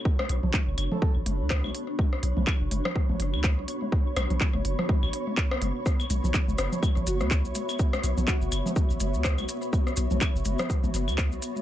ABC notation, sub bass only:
X:1
M:4/4
L:1/16
Q:"Swing 16ths" 1/4=124
K:Bm
V:1 name="Sub bass" clef=bass
z2 B,,, B,,, z F,,, F,,, z2 A,,, F,,, D,,2 B,,, z2 | z2 B,,, B,,, z F,,, F,,, z2 A,,, F,,, D,,2 B,,, z2 | z2 B,,, B,,, z F,,, F,,, z2 A,,, z4 F,,, z | z2 B,,, B,,, z F,,, F,,, z2 A,,, F,,, D,,2 B,,, z2 |
z2 B,,, B,,, z F,,, F,,, z2 A,,, F,,, D,,2 B,,, z2 | z2 B,,, B,,, z F,,, F,,, z2 A,,, F,,, D,,2 B,,, z2 |]